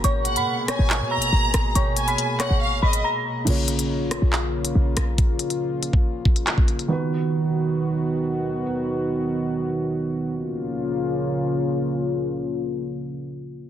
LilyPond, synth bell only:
\new Staff \with { instrumentName = "Synth bell" } { \time 4/4 \key bes \phrygian \tempo 4 = 140 <des'' des'''>8. <ces''' ces''''>8. <des'' des'''>4 <bes'' bes'''>4. | <des'' des'''>8. <ces''' ces''''>8. <des'' des'''>4 <ces''' ces''''>8 <bes'' bes'''>8 r8 | r1 | r1 |
r1 | r1 | r1 | r1 | }